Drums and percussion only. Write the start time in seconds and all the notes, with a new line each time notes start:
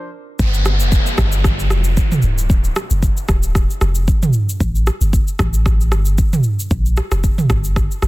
0.39 kick, shaker
0.54 shaker
0.65 cross-stick, shaker
0.80 shaker
0.92 kick, shaker
1.06 shaker
1.18 kick, cross-stick, shaker
1.32 shaker
1.44 kick, cross-stick, shaker
1.59 shaker
1.70 cross-stick, shaker
1.84 shaker
1.97 kick, shaker
2.12 mid tom, shaker
2.22 shaker
2.38 shaker
2.50 kick, shaker
2.64 shaker
2.76 cross-stick, shaker
2.91 shaker
3.03 kick, shaker
3.17 shaker
3.29 kick, cross-stick, shaker
3.43 shaker
3.55 kick, cross-stick, shaker
3.70 shaker
3.81 cross-stick, shaker
3.95 shaker
4.08 kick, shaker
4.23 mid tom, shaker
4.33 shaker
4.49 shaker
4.60 kick, shaker
4.75 shaker
4.87 cross-stick, shaker
5.01 shaker
5.13 kick, shaker
5.28 shaker
5.39 kick, cross-stick, shaker
5.54 shaker
5.66 kick, cross-stick, shaker
5.81 shaker
5.92 cross-stick, shaker
6.05 shaker
6.18 kick, shaker
6.33 mid tom, shaker
6.43 shaker
6.60 shaker
6.71 kick, shaker
6.86 shaker
6.97 cross-stick, shaker
7.12 cross-stick, shaker
7.24 kick, shaker
7.38 mid tom, shaker
7.50 kick, cross-stick, shaker
7.64 shaker
7.76 kick, cross-stick, shaker
7.91 shaker
8.02 cross-stick, shaker